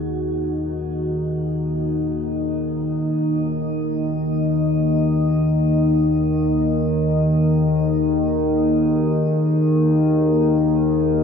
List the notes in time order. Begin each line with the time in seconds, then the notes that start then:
Already playing: D#2 D#3 A#3 D#4 F#4 G#4 D#5
5.50 G#4
10.96 D#3